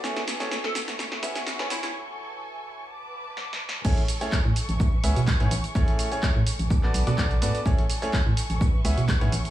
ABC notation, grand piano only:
X:1
M:4/4
L:1/16
Q:"Swing 16ths" 1/4=126
K:A
V:1 name="Grand piano"
[A,CEGc] z2 [A,CEGc] z6 [B,CEGe] z2 [B,CEGc] z2 | z16 | [A,CEGc] z2 [A,CEGc] z6 [B,CEGe] z2 [B,CEGc] z2 | [A,CEGc]3 [A,CEGc]2 z4 [B,DFAd]2 [B,DFAd] [B,DFAd] z [B,DFAd] z |
[A,CEGc] z2 [A,CEGc] z6 [B,CEGe] z2 [B,CEGc] z2 |]